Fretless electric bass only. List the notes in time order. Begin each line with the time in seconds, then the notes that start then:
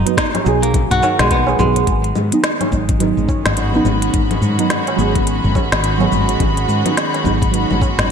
0.46 B1
0.91 B1
1.19 B1
1.59 B1
1.87 G#1
2.15 G#2
2.72 G#1
3.17 G#1
3.45 G#1
3.85 G#1
4.14 G#1
4.42 G#2
4.98 G#1
5.44 G#1
5.72 G#1
6.12 G#1
6.40 G#1
6.68 G#2
7.25 G#1
7.71 G#1
7.99 G#1